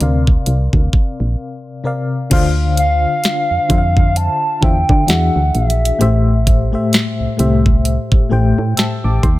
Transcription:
Already playing: fm electric piano F5
0.00 fm bass D2, fm electric piano C3 C4 A#4 D5 F5, closed hi-hat
0.27 kick
0.46 fm bass C2, closed hi-hat
0.73 fm bass D2, kick
0.93 kick
1.20 fm bass A#1
1.84 fm electric piano C3 C4 A#4 D5 F5
2.30 fm bass D2, fm electric piano D3 D4 F4 C5 F5, kick, closed hi-hat, crash
2.77 soft synth lead F5, closed hi-hat
3.24 snare, closed hi-hat
3.51 fm bass F2
3.69 fm bass F2, fm electric piano D3 D4 F4 C5 E5, kick, closed hi-hat
3.78 fm electric piano F5
3.97 kick
4.16 soft synth lead A5, closed hi-hat
4.61 fm bass E2, fm electric piano D3 D4 F4 C5 E5, soft synth lead G5, kick
4.89 fm bass D3, kick
5.06 fm bass E2, fm electric piano E3 D4 F#4 G#4 E5, soft synth lead F#5, snare, closed hi-hat
5.36 fm bass D2
5.55 fm bass A#1, soft synth lead E5, closed hi-hat
5.70 closed hi-hat
5.85 closed hi-hat
5.99 fm bass A1, fm electric piano A2 A3 G4 C5 E5, closed hi-hat
6.47 kick, closed hi-hat
6.72 fm electric piano A2 A3 G4 C5 E5
6.93 snare, closed hi-hat
7.20 fm bass C2
7.37 fm bass C2, fm electric piano A2 A3 G4 C5 E5, closed hi-hat
7.66 kick
7.85 closed hi-hat
8.12 kick
8.29 fm bass A1, fm electric piano A2 A3 G4 C5 G5
8.58 fm bass A2
8.77 fm electric piano A5 E6, snare, closed hi-hat
9.04 fm bass A1, fm electric piano A5 D6
9.23 fm bass D#2, fm electric piano G5 C6, kick, closed hi-hat

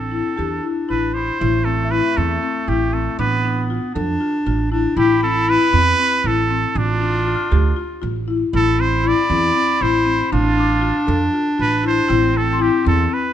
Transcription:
Already playing: upright bass A1, clarinet C4, muted trumpet A4
0.11 marimba E4
0.37 upright bass E2, clarinet D4, marimba G4
0.63 marimba E4
0.89 upright bass A1, marimba E4, muted trumpet B4
1.14 marimba D4, clarinet E4, muted trumpet C5
1.40 upright bass A1, clarinet A3, marimba E4
1.65 marimba C4, muted trumpet A4
1.85 celesta E5
1.91 marimba E4, muted trumpet B4
2.17 upright bass E2, marimba C4, muted trumpet A4
2.42 marimba C4
2.67 upright bass A1, marimba E4, muted trumpet G4
2.93 marimba C4, muted trumpet A4
3.19 upright bass A1, clarinet B3, marimba D4, muted trumpet B4
3.45 marimba D4
3.70 marimba F4
3.94 upright bass F2, clarinet D4, marimba A4
4.21 marimba F4
4.46 upright bass A1, marimba F4
4.71 clarinet D4, marimba E4
4.97 upright bass A1, clarinet E4, marimba E4, muted trumpet G4
5.23 marimba C4, muted trumpet A4
5.48 marimba E4, muted trumpet B4
5.73 upright bass E2, marimba C4
5.99 marimba C4
6.24 upright bass A1, marimba E4, muted trumpet A4
6.51 marimba C4
6.74 upright bass A1, marimba D4, muted trumpet D4, clarinet F4
7.01 marimba D4
7.27 marimba F4
7.35 celesta F6
7.52 upright bass D2, marimba G4
7.76 marimba F4
8.02 upright bass A1, marimba F4
8.28 marimba E4
8.52 upright bass A1, clarinet E4, marimba E4, muted trumpet A4
8.79 marimba C4, muted trumpet C5
9.04 marimba E4, muted trumpet D5
9.30 upright bass E2, marimba C4
9.55 marimba C4
9.80 upright bass A1, marimba E4, muted trumpet C5
10.06 marimba C4
10.32 upright bass A1, marimba D4, clarinet D4, muted trumpet F4
10.57 marimba D4, celesta D6
10.81 marimba F4
11.07 upright bass F2, marimba A4
11.33 marimba F4
11.58 upright bass A1, marimba F4, muted trumpet B4
11.83 marimba E4, muted trumpet C5
12.08 upright bass A1, clarinet C4, marimba E4
12.34 marimba C4, muted trumpet A4
12.53 celesta C6
12.60 marimba E4, muted trumpet G4
12.85 upright bass E2, marimba C4, muted trumpet A4
13.11 marimba C4, muted trumpet B4

